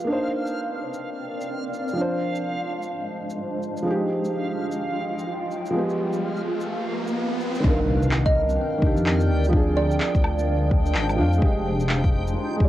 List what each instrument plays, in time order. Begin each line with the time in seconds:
Already playing: felt piano F3 G#3 G4, ambient pad F4, synth texture F5
0.04 felt piano A#3 D4
0.09 ambient pad C4, felt piano D#4 C5
0.28 ambient pad A#4
0.34 ambient pad D5
0.47 shaker
0.94 shaker
1.41 shaker
1.74 shaker
1.88 shaker
1.93 felt piano F3 D4
1.97 ambient pad D4, felt piano C5
2.19 ambient pad G#3
2.32 ambient pad C5, shaker
2.67 ambient pad F5
2.83 shaker
3.30 shaker
3.63 shaker
3.77 shaker
3.82 felt piano F3 G#3, riser
3.87 felt piano D#4 G4, ambient pad F4
4.04 ambient pad G5
4.14 ambient pad D#5
4.25 shaker
4.72 shaker
5.19 shaker
5.51 shaker
5.66 shaker
5.71 felt piano F3 G#3
5.76 felt piano B3 G4
5.90 shaker
6.13 shaker
6.21 ambient pad B4
6.37 shaker
6.61 shaker
7.08 shaker
7.40 shaker
7.55 shaker
7.60 detuned saw bass C2, felt piano D#3, ambient pad C4, synth texture G5, kick
7.64 felt piano D4, impact
7.68 felt piano A#4
7.88 ambient pad A#4
8.03 shaker
8.11 clap
8.25 ambient pad D5, kalimba D#5, kick, shaker
8.49 shaker
8.78 detuned saw bass C2, felt piano D#3
8.82 felt piano D4, kick
8.86 felt piano G4
8.96 detuned saw bass F2, shaker
9.06 clap
9.20 shaker
9.30 detuned saw bass D2
9.44 shaker
9.49 felt piano F3
9.53 felt piano D4 G#4, ambient pad D4, kick
9.58 ambient pad G#3
9.77 kalimba D5
9.91 shaker
9.97 ambient pad C5, clap
10.15 detuned saw bass D2, kick, shaker
10.24 low woodblock
10.39 ambient pad F5, shaker
10.71 kick
10.86 shaker
10.94 detuned saw bass G#1, clap
11.09 low woodblock, shaker
11.16 detuned saw bass F2, felt piano F3 D4
11.21 felt piano F5
11.33 shaker
11.38 felt piano G#3
11.42 detuned saw bass F1, ambient pad F4, felt piano G4 D#5, kick
11.47 ambient pad D#4
11.53 ambient pad G5
11.80 shaker
11.89 clap
12.04 kick, shaker
12.27 shaker
12.56 detuned saw bass F1, felt piano G#3, kick
12.60 felt piano G4 D5